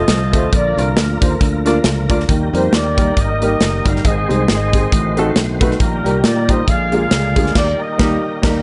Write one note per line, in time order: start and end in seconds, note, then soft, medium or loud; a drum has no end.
0.00 0.51 C3 medium
0.00 2.24 F3 medium
0.00 0.51 A3 medium
0.00 2.24 F4 medium
0.00 0.49 A4 medium
0.00 0.51 A4 medium
0.00 0.49 C5 medium
0.00 0.52 D#5 loud
0.08 0.34 C2 loud
0.08 snare loud
0.08 closed hi-hat loud
0.33 0.50 D2 medium
0.33 0.43 A3 medium
0.33 0.43 C4 medium
0.33 0.44 F4 medium
0.33 0.44 A4 medium
0.33 0.44 C5 medium
0.33 kick loud
0.33 closed hi-hat medium
0.52 0.74 A#1 loud
0.52 1.18 A#2 medium
0.52 2.27 D3 medium
0.52 4.01 A#3 medium
0.52 0.78 F4 medium
0.52 4.01 A#4 medium
0.52 0.77 A#4 medium
0.52 0.76 D5 loud
0.52 kick loud
0.52 closed hi-hat medium
0.77 0.94 C2 medium
0.77 0.87 A#3 medium
0.77 0.88 D4 medium
0.77 1.62 D4 medium
0.77 0.88 F4 medium
0.77 1.62 F4 medium
0.77 1.41 A#4 medium
0.77 0.88 A#4 medium
0.77 0.88 D5 medium
0.77 closed hi-hat medium
0.97 1.18 D2 medium
0.97 snare loud
0.97 closed hi-hat medium
1.21 1.38 D#2 medium
1.21 1.31 A#3 medium
1.21 1.31 D4 medium
1.21 1.31 F4 medium
1.21 1.32 A#4 medium
1.21 1.32 C5 medium
1.21 kick loud
1.21 closed hi-hat medium
1.41 1.78 D2 loud
1.41 kick loud
1.41 closed hi-hat medium
1.65 1.75 A#3 medium
1.65 1.76 D4 medium
1.65 1.76 F4 medium
1.65 1.76 A#4 medium
1.65 1.76 D5 loud
1.65 snare soft
1.65 closed hi-hat medium
1.84 2.06 C#2 loud
1.84 snare loud
1.84 closed hi-hat loud
2.09 2.26 D2 loud
2.09 2.19 A#3 medium
2.09 2.19 D4 medium
2.09 2.20 F4 medium
2.09 2.20 A#4 medium
2.09 2.20 D5 loud
2.09 kick loud
2.09 closed hi-hat medium
2.20 snare soft
2.29 2.50 D#2 loud
2.29 2.94 D#3 medium
2.29 6.64 D#3 medium
2.29 4.03 G3 medium
2.29 4.03 G4 medium
2.29 kick loud
2.29 closed hi-hat medium
2.53 2.70 F2 loud
2.53 2.63 G3 medium
2.53 2.63 A#3 medium
2.53 2.64 D#4 medium
2.53 2.64 G4 medium
2.53 2.64 A#4 medium
2.53 2.72 C5 medium
2.53 closed hi-hat medium
2.73 3.10 D#2 medium
2.73 3.17 G4 medium
2.73 3.17 A#4 medium
2.73 3.17 D5 medium
2.73 snare loud
2.73 closed hi-hat medium
2.97 3.07 G3 medium
2.97 3.07 A#3 medium
2.97 3.08 D#4 medium
2.97 3.08 G4 medium
2.97 3.08 A#4 medium
2.97 kick loud
2.97 closed hi-hat medium
3.17 3.54 G#1 loud
3.17 4.01 G4 medium
3.17 4.01 A#4 medium
3.17 3.87 D#5 loud
3.17 kick medium
3.17 closed hi-hat medium
3.41 3.51 G3 medium
3.41 3.51 A#3 medium
3.41 3.52 D#4 medium
3.41 3.52 G4 medium
3.41 3.52 A#4 medium
3.41 closed hi-hat medium
3.60 3.82 F#1 loud
3.60 snare loud
3.60 closed hi-hat loud
3.85 4.01 G1 medium
3.85 3.95 G3 medium
3.85 3.95 A#3 medium
3.85 3.96 D#4 medium
3.85 3.96 G4 medium
3.85 3.96 A#4 medium
3.85 4.05 F5 loud
3.85 kick loud
3.85 closed hi-hat medium
3.96 snare soft
4.04 4.26 G#1 loud
4.04 4.69 G#2 medium
4.04 4.91 G#3 medium
4.04 4.91 C4 medium
4.04 4.91 G#4 medium
4.04 4.48 G#4 medium
4.04 4.91 C5 medium
4.04 4.48 C5 medium
4.04 4.29 D#5 loud
4.04 kick loud
4.04 closed hi-hat medium
4.28 4.46 C2 medium
4.28 4.39 G#3 medium
4.28 4.39 C4 medium
4.28 4.39 D#4 medium
4.28 4.39 G#4 medium
4.28 4.40 C5 medium
4.28 4.47 D#5 loud
4.28 closed hi-hat medium
4.48 4.86 G#1 medium
4.48 5.33 G#4 medium
4.48 5.33 C5 medium
4.48 5.33 D#5 medium
4.48 snare loud
4.48 closed hi-hat medium
4.72 4.83 G#3 medium
4.72 4.83 C4 medium
4.72 4.83 D#4 medium
4.72 4.84 G#4 medium
4.72 4.84 C5 medium
4.72 kick loud
4.72 closed hi-hat medium
4.92 5.30 A1 loud
4.92 5.57 A2 medium
4.92 5.79 A3 medium
4.92 5.79 C4 medium
4.92 5.79 F#4 medium
4.92 5.79 C5 medium
4.92 kick loud
4.92 closed hi-hat medium
5.17 5.27 A3 medium
5.17 5.27 C4 medium
5.17 5.27 D#4 medium
5.17 5.28 F#4 medium
5.17 5.28 A4 loud
5.17 closed hi-hat medium
5.36 5.74 B1 loud
5.36 snare loud
5.36 closed hi-hat loud
5.61 5.71 A3 medium
5.61 5.71 C4 medium
5.61 5.71 D#4 medium
5.61 5.71 F#4 medium
5.61 5.72 B4 loud
5.61 kick loud
5.61 closed hi-hat medium
5.71 snare soft
5.80 6.01 A#1 loud
5.80 6.45 A#2 medium
5.80 6.67 G3 medium
5.80 6.67 A#3 medium
5.80 6.64 D#4 medium
5.80 6.67 G4 medium
5.80 6.64 G4 medium
5.80 6.67 A#4 medium
5.80 6.21 A#4 medium
5.80 kick loud
5.80 closed hi-hat medium
6.04 6.21 C2 medium
6.04 6.15 G3 medium
6.04 6.15 A#3 medium
6.04 6.15 D#4 medium
6.04 6.15 G4 medium
6.04 6.16 A#4 medium
6.04 closed hi-hat medium
6.24 6.61 A#2 loud
6.24 6.49 D5 loud
6.24 snare loud
6.24 closed hi-hat medium
6.48 6.58 G3 medium
6.48 6.59 A#3 medium
6.48 6.59 D#4 medium
6.48 6.59 G4 medium
6.48 6.60 C5 medium
6.48 6.69 D#5 loud
6.48 kick medium
6.48 closed hi-hat medium
6.68 7.05 A#1 loud
6.68 7.33 A#2 medium
6.68 7.55 D3 medium
6.68 7.55 G#3 medium
6.68 8.62 A#3 medium
6.68 7.55 F4 medium
6.68 7.55 G#4 medium
6.68 6.93 G#4 medium
6.68 6.94 D5 medium
6.68 6.93 F5 loud
6.68 kick loud
6.68 closed hi-hat medium
6.92 7.02 G#3 medium
6.92 7.02 A#3 medium
6.92 7.02 D4 medium
6.92 7.03 F4 medium
6.92 7.03 G#4 medium
6.92 7.52 G#4 medium
6.92 7.53 D5 medium
6.92 7.52 F5 loud
6.92 closed hi-hat medium
7.11 7.33 C#2 loud
7.11 snare loud
7.11 closed hi-hat loud
7.35 7.53 D2 medium
7.35 7.46 G#3 medium
7.35 7.46 A#3 medium
7.35 7.46 D4 medium
7.35 7.47 F4 medium
7.35 7.47 G#4 medium
7.35 kick loud
7.35 closed hi-hat medium
7.46 snare soft
7.55 7.72 D#2 loud
7.55 8.62 D#3 medium
7.55 8.62 G3 medium
7.55 7.80 G4 medium
7.55 8.62 G4 medium
7.55 7.80 A#4 medium
7.55 8.62 A#4 medium
7.55 7.81 D5 loud
7.55 kick loud
7.55 snare loud
7.55 crash medium
7.81 8.62 G4 medium
7.81 8.62 A#4 medium
7.81 8.44 D#5 medium
7.98 8.17 D#2 loud
7.98 8.16 G3 medium
7.98 8.16 A#3 loud
7.98 8.16 D#4 loud
7.98 8.17 G4 loud
7.98 8.17 A#4 loud
7.98 kick loud
7.98 snare loud
8.42 8.61 D#2 medium
8.42 8.60 G3 medium
8.42 8.60 A#3 medium
8.42 8.60 D#4 medium
8.42 8.61 G4 medium
8.42 8.61 A#4 medium
8.42 kick loud
8.42 snare loud
8.42 crash medium